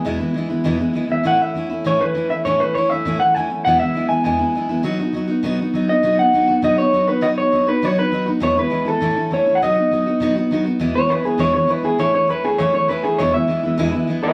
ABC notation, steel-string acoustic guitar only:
X:1
M:4/4
L:1/8
Q:1/4=201
K:E
V:1 name="Steel-string acoustic guitar"
[E,,B,,E,G,B,E] [E,G,B,E] [E,G,B,E] [E,G,B,E] [E,,B,,E,G,B,E] [E,G,B,E] [E,G,B,E] [E,G,B,E] | [A,,E,A,CE] [A,CE] [E,A,CE] [A,CE] [A,,E,A,CE] [A,CE] [E,A,CE] [A,CE] | [A,,E,A,CE] [A,CE] [E,A,CE] [A,CE] [A,,E,A,CE] [CE] [E,A,CE] [A,CE] | [E,,B,,E,G,B,E] [E,G,B,E] [E,G,B,E] [E,G,B,E] [E,,B,,E,G,B,E] [E,G,B,E] [E,G,B,E] [E,G,B,E] |
[B,,F,B,DF] [B,DF] [F,B,DF] [B,DF] [B,,F,B,DF] [B,DF] [F,B,DF] [B,DF] | [B,,F,B,DF] [B,DF] [F,B,DF] [B,DF] [B,,F,B,DF] [B,DF] [F,B,DF] [B,DF] | [B,,F,B,DF] [B,DF] [F,B,DF] [B,DF] [B,,F,B,DF] [B,DF] [F,B,DF] [B,DF] | [E,,B,,E,G,B,E] [E,G,B,E] [E,G,B,E] [E,G,B,E] [A,,E,A,CE] [A,CE] [E,A,CE] [A,CE] |
[B,,F,B,DF] [B,DF] [F,B,DF] [B,DF] [B,,F,B,DF] [B,DF] [F,B,DF] [B,DF] | [E,,B,,E,G,B,E] [E,G,B,E] [E,G,B,E] [E,G,B,E] [E,,B,,E,G,B,E] [E,G,B,E] [E,G,B,E] [E,G,B,E] | [A,,E,A,CE] [A,CE] [E,A,CE] [A,CE] [A,,E,A,CE] [A,CE] [E,A,CE] [A,CE] | [E,,B,,E,G,B,E] [E,G,B,E] [E,G,B,E] [E,G,B,E] [E,,B,,E,G,B,E] [E,G,B,E] [E,G,B,E] [E,G,B,E] |]